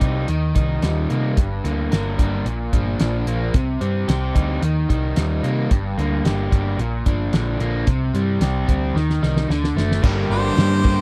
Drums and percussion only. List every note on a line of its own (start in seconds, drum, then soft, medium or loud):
0.01 kick medium
0.01 closed hi-hat medium
0.28 closed hi-hat medium
0.56 kick medium
0.56 closed hi-hat medium
0.82 snare medium
0.82 closed hi-hat medium
1.10 closed hi-hat medium
1.37 kick loud
1.37 closed hi-hat medium
1.65 closed hi-hat medium
1.92 snare medium
1.92 closed hi-hat medium
2.19 kick medium
2.19 closed hi-hat medium
2.46 closed hi-hat medium
2.73 kick medium
2.73 closed hi-hat medium
3.00 snare loud
3.00 closed hi-hat medium
3.27 closed hi-hat medium
3.54 kick loud
3.54 closed hi-hat medium
3.81 closed hi-hat medium
4.09 snare medium
4.09 closed hi-hat medium
4.36 kick medium
4.36 closed hi-hat medium
4.63 closed hi-hat medium
4.90 kick medium
4.90 closed hi-hat medium
5.16 snare medium
5.16 closed hi-hat medium
5.44 closed hi-hat medium
5.71 kick medium
5.71 closed hi-hat medium
5.99 closed hi-hat medium
6.25 snare loud
6.25 closed hi-hat medium
6.52 kick medium
6.52 closed hi-hat medium
6.79 closed hi-hat medium
7.06 kick medium
7.06 closed hi-hat medium
7.33 snare loud
7.33 closed hi-hat medium
7.60 closed hi-hat medium
7.87 kick loud
7.87 closed hi-hat medium
8.15 closed hi-hat medium
8.41 snare medium
8.41 closed hi-hat medium
8.69 kick medium
8.69 closed hi-hat medium
8.96 snare soft
9.10 snare medium
9.23 snare medium
9.37 snare medium
9.50 snare medium
9.64 snare medium
9.78 snare medium
9.91 snare medium
10.03 kick loud
10.03 crash loud
10.03 crash medium
10.57 snare loud
10.57 crash medium
10.85 kick medium